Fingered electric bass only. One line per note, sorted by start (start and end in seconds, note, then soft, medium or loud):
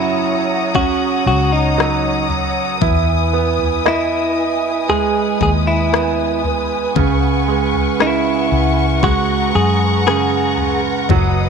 0.00 1.28 F#2 medium
1.26 2.78 C#2 medium
2.82 5.37 E2 medium
5.41 6.92 D#2 medium
6.96 8.47 C#2 medium
8.52 9.51 C#2 medium
9.55 11.06 F#2 medium
11.10 11.49 F#1 medium